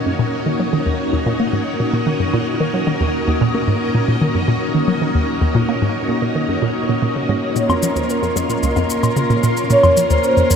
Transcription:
Already playing: string machine A#3 C#4 D#4 F#4 A#4, synth texture C#5 D#5
0.06 synth arpeggio sound F#2
0.19 synth arpeggio sound A#2
0.46 synth arpeggio sound D#3
0.59 synth arpeggio sound F#3
0.73 synth arpeggio sound D#3
0.86 synth arpeggio sound D#2
1.13 synth arpeggio sound D#2
1.26 synth arpeggio sound A#2
1.40 synth arpeggio sound A#3
1.53 synth arpeggio sound G#2
1.80 synth arpeggio sound A#2
1.94 synth arpeggio sound A#2
2.07 synth arpeggio sound D#3
2.20 synth arpeggio sound F#2
2.34 synth arpeggio sound A#2
2.60 synth arpeggio sound D#3
2.74 synth arpeggio sound F#3
2.87 synth arpeggio sound D#3
3.01 synth arpeggio sound D#2
3.28 synth arpeggio sound D#2
3.41 synth arpeggio sound A#2
3.55 synth arpeggio sound A#3
3.68 synth arpeggio sound G#2
3.95 synth arpeggio sound A#2
4.08 synth arpeggio sound A#2
4.22 synth arpeggio sound D#3
4.35 synth arpeggio sound F#2
4.48 synth arpeggio sound A#2
4.75 synth arpeggio sound D#3
4.88 synth arpeggio sound F#3
5.01 synth arpeggio sound D#3
5.15 synth arpeggio sound D#2
5.41 synth arpeggio sound D#2
5.55 synth arpeggio sound A#2
5.69 synth arpeggio sound A#3
5.82 synth arpeggio sound G#2
6.09 synth arpeggio sound A#2
6.22 synth arpeggio sound A#2
6.35 synth arpeggio sound D#3
6.49 synth arpeggio sound F#2
6.62 synth arpeggio sound A#2
6.89 synth arpeggio sound A#2
7.02 synth arpeggio sound A#2
7.16 synth arpeggio sound C#3
7.29 synth arpeggio sound G#2
7.56 synth arpeggio sound A#2, string machine A#3 C#4 F4 A#4, synth texture A#4 C6, analog synth lead C#5, shaker
7.69 synth arpeggio sound F2, low woodblock, shaker
7.83 synth arpeggio sound F3, shaker
7.96 synth arpeggio sound D#2, analog synth lead C5, shaker
8.10 analog synth lead A#4, shaker
8.23 synth arpeggio sound F2, shaker
8.36 synth arpeggio sound F2, analog synth lead D#5, shaker
8.50 synth arpeggio sound A#2, shaker
8.63 synth arpeggio sound C#2, shaker
8.76 synth arpeggio sound F2, shaker
8.90 shaker
9.03 synth arpeggio sound A#2, low woodblock, shaker
9.16 synth arpeggio sound C#3, shaker
9.30 synth arpeggio sound A#2, shaker
9.43 synth arpeggio sound A#2, shaker
9.57 shaker
9.70 synth arpeggio sound A#2, analog synth lead C#5, shaker
9.83 synth arpeggio sound F2, low woodblock, shaker
9.97 synth arpeggio sound F3, shaker
10.10 synth arpeggio sound D#2, analog synth lead C5, shaker
10.23 analog synth lead C5, shaker
10.37 synth arpeggio sound F2, shaker
10.50 synth arpeggio sound F2, analog synth lead C#5, shaker

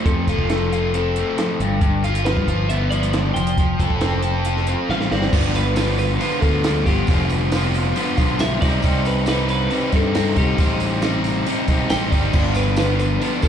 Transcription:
Already playing: overdriven electric guitar A3 C4 F4
0.06 fingered electric bass F2, overdriven electric guitar F3, clean electric guitar A4, kick, closed hi-hat
0.27 fingered electric bass F1, overdriven electric guitar F4, kick, closed hi-hat
0.38 fingered electric bass F1, kick
0.50 overdriven electric guitar A3, clean electric guitar A4, snare, closed hi-hat
0.73 overdriven electric guitar F4, closed hi-hat
0.94 overdriven electric guitar C4, clean electric guitar A4, closed hi-hat
1.16 overdriven electric guitar A3, closed hi-hat
1.38 overdriven electric guitar F3, snare, closed hi-hat
1.60 fingered electric bass G1, overdriven electric guitar G2, closed hi-hat
1.81 overdriven electric guitar G2, kick, closed hi-hat
2.04 overdriven electric guitar F4, closed hi-hat
2.15 closed hi-hat
2.25 overdriven electric guitar F3, clean electric guitar B4, snare, closed hi-hat
2.37 fingered electric bass G2, kick
2.48 fingered electric bass G1, overdriven electric guitar F4, kick, closed hi-hat
2.69 overdriven electric guitar B3, clean electric guitar E5, closed hi-hat
2.90 overdriven electric guitar F3, clean electric guitar D5, closed hi-hat
3.03 closed hi-hat
3.13 overdriven electric guitar D3, snare, closed hi-hat
3.34 fingered electric bass F1, overdriven electric guitar F3, clean electric guitar G5, closed hi-hat
3.47 closed hi-hat
3.58 overdriven electric guitar F3, kick, closed hi-hat
3.79 fingered electric bass F1, overdriven electric guitar A4, kick, closed hi-hat
3.90 fingered electric bass F1, kick
4.01 overdriven electric guitar C4, snare, closed hi-hat
4.23 overdriven electric guitar A4, closed hi-hat
4.45 overdriven electric guitar F4, closed hi-hat
4.57 snare
4.67 overdriven electric guitar C4, closed hi-hat
4.89 fingered electric bass A1, overdriven electric guitar G3, clean electric guitar F5, snare
5.00 snare
5.11 fingered electric bass G1, overdriven electric guitar C4, clean electric guitar D5, snare
5.22 snare
5.33 fingered electric bass G1, overdriven electric guitar G2 D3 F3 B3 F4, kick, crash, tambourine
5.55 clean electric guitar B4, open hi-hat, tambourine
5.76 overdriven electric guitar D3 F3 B3 F4, clean electric guitar B4, snare, open hi-hat, tambourine
5.98 clean electric guitar B4, open hi-hat, tambourine
6.20 overdriven electric guitar D3 F3 B3 F4, open hi-hat, tambourine
6.42 fingered electric bass D2, overdriven electric guitar F3 B3 F4, clean electric guitar A4, kick, open hi-hat
6.64 overdriven electric guitar G2 D3 F3 B3 F4, snare, open hi-hat, tambourine
6.86 fingered electric bass G1, overdriven electric guitar F3 B3 F4, clean electric guitar G4, kick, open hi-hat, tambourine
7.07 fingered electric bass F1, overdriven electric guitar G2 D3 F3 B3, kick, open hi-hat, tambourine
7.11 overdriven electric guitar F4
7.30 open hi-hat, tambourine
7.52 overdriven electric guitar D3 F3 B3 F4, snare, open hi-hat, tambourine
7.74 open hi-hat, tambourine
7.96 overdriven electric guitar D3 F3 B3 F4, open hi-hat, tambourine
8.17 fingered electric bass B1, overdriven electric guitar F3 B3 F4, kick, open hi-hat, tambourine
8.39 overdriven electric guitar G2 D3 F3 B3 F4, clean electric guitar E5, snare, open hi-hat, tambourine
8.61 fingered electric bass C2, overdriven electric guitar C3 G3 C4 D#4, clean electric guitar D5, kick, snare, open hi-hat, tambourine
8.82 fingered electric bass C2, overdriven electric guitar C3 G3 C4 D#4, kick, open hi-hat, tambourine
9.05 clean electric guitar B4, open hi-hat, tambourine
9.26 overdriven electric guitar C3 G3 C4 D#4, clean electric guitar B4, snare, open hi-hat, tambourine
9.48 clean electric guitar B4, open hi-hat, tambourine
9.70 overdriven electric guitar C3 G3 C4 D#4, open hi-hat, tambourine
9.92 fingered electric bass G2, overdriven electric guitar G3 C4 D#4, clean electric guitar A4, kick, open hi-hat, tambourine
10.15 overdriven electric guitar C3 G3 C4 D#4, snare, open hi-hat, tambourine
10.36 fingered electric bass C2, overdriven electric guitar G3 C4 D#4, clean electric guitar G4, kick, open hi-hat, tambourine
10.58 fingered electric bass A1, overdriven electric guitar C3 G3 C4 D#4, kick, open hi-hat, tambourine
10.80 open hi-hat, tambourine
11.02 overdriven electric guitar C3 G3 C4 D#4, snare, open hi-hat, tambourine
11.24 open hi-hat, tambourine
11.46 overdriven electric guitar C3 G3 C4 D#4, open hi-hat, tambourine
11.68 fingered electric bass B1, overdriven electric guitar G3 C4 D#4, kick, open hi-hat, tambourine
11.90 fingered electric bass A1, overdriven electric guitar C3 G3 C4 D#4, clean electric guitar G5, snare, open hi-hat, tambourine
12.11 fingered electric bass G1, overdriven electric guitar G3 C4 D#4, clean electric guitar D5, kick, open hi-hat, tambourine
12.33 fingered electric bass G1, overdriven electric guitar G2 D3 F3 B3 D4, kick, tambourine, crash
12.54 clean electric guitar B4, open hi-hat, tambourine
12.76 overdriven electric guitar D3 F3 B3, clean electric guitar B4, snare, open hi-hat, tambourine
12.80 overdriven electric guitar D4
12.99 clean electric guitar B4, open hi-hat, tambourine
13.21 overdriven electric guitar D3 F3 B3 D4, open hi-hat, tambourine
13.42 fingered electric bass D2, overdriven electric guitar F3 B3 D4, clean electric guitar A4, kick, open hi-hat, tambourine

